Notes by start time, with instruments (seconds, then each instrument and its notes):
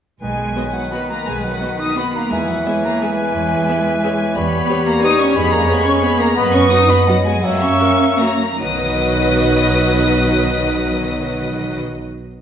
0.21 double bass section B1, bassoon D#3, cello section G#3, french horn section G#3, oboe B4, clarinet D#5, flute G#5, violin section G#5
0.56 viola section B3 F#4, violin section B4 D#5, clarinet C#5
0.73 cello section F#3, french horn section F#3, flute F#5, violin section F#5
0.91 viola section B3 F#4, cello section B3, french horn section B3, clarinet B4, violin section B4 D#5 B5, flute B5
1.09 cello section A#3, french horn section A#3, flute A#5, violin section A#5
1.26 double bass section B1, cello section G#3, french horn section G#3, flute G#5, violin section G#5
1.43 cello section F#3, french horn section F#3, flute F#5, violin section F#5
1.61 viola section B3 F#4, violin section B4 D#5, clarinet D#5
1.79 cello section D#4, french horn section D#4, flute D#6, violin section D#6
1.97 cello section B3, viola section B3 F#4, french horn section B3, violin section B4 D#5 B5, clarinet D#5, flute B5
2.14 cello section A#3, french horn section A#3, violin section A#5, flute A#5
2.31 double bass section E2, bassoon E3, cello section G#3, french horn section G#3, oboe B4, clarinet E5, violin section G#5, flute G#5
2.47 french horn section F#3, cello section F#3, violin section F#5, flute F#5
2.65 cello section G#3, french horn section G#3, viola section B3 G#4, violin section B4 E5 G#5, clarinet C#5, flute G#5
2.83 french horn section A#3, cello section A#3, violin section A#5, flute A#5
3.01 french horn section G#3, cello section G#3, viola section B3 G#4, violin section B4 E5 G#5, clarinet B4, flute G#5
3.35 double bass section E2, clarinet C#5
3.68 viola section B3 G#4, violin section B4 E5, clarinet B4
4.03 viola section B3 G#4, violin section B4 E5, clarinet C#5
4.35 double bass section E2, bassoon G3, cello section B3, french horn section B3, clarinet B4, oboe C#5, flute B5, violin section B5
4.69 viola section B3 G4, clarinet G4, violin section B4 C#5
4.86 cello section A#3, french horn section A#3, violin section A#5, flute A#5
5.03 viola section B3 G4, cello section D#4, french horn section D#4, violin section B4 C#5 D#6, flute D#6
5.19 cello section C#4, french horn section C#4, violin section C#6, flute C#6
5.35 double bass section F2, bassoon G#3, cello section B3, french horn section B3, clarinet G#4, violin section B5, flute B5
5.51 cello section A#3, french horn section A#3, violin section A#5, flute A#5
5.68 french horn section B3, cello section B3, viola section B3 G#4, violin section B4 C#5 B5, flute B5
5.85 french horn section C#4, cello section C#4, violin section C#6, flute C#6
6.02 french horn section B3, cello section B3, viola section B3 G#4, violin section B4 C#5 B5, flute B5
6.19 cello section A#3, french horn section A#3, violin section A#5, flute A#5
6.35 double bass section F#2, french horn section B3, bassoon B3, cello section B3, clarinet B4, oboe D#5, violin section B5, flute B5
6.53 french horn section C#4, cello section C#4, violin section C#6, flute C#6
6.69 viola section B3 F#4, french horn section D#4, cello section D#4, violin section B4 D#5 D#6, flute D#6
6.88 french horn section B3, cello section B3, violin section B5, flute B5
7.07 french horn section F#3, cello section F#3, viola section B3 F#4, violin section B4 D#5 F#5, clarinet D#5, flute F#5
7.25 cello section G#3, french horn section G#3, flute G#5, violin section G#5
7.42 double bass section F#2, cello section F#3, french horn section F#3, bassoon A#3, clarinet C#5, oboe E5, flute F#5, violin section F#5
7.60 cello section C#4, french horn section C#4, flute C#6, violin section C#6
7.79 viola section F#3 F#4, violin section A#4 E5, clarinet A#4
8.19 viola section F#3 F#4, cello section A#3, french horn section A#3, violin section A#4 E5 A#5, clarinet C#5, flute A#5
8.60 double bass section B1, cello section D#3, bassoon F#3, viola section F#3 F#4, clarinet B3, french horn section D#4, violin section B4 D#5 D#6, oboe B4, flute D#5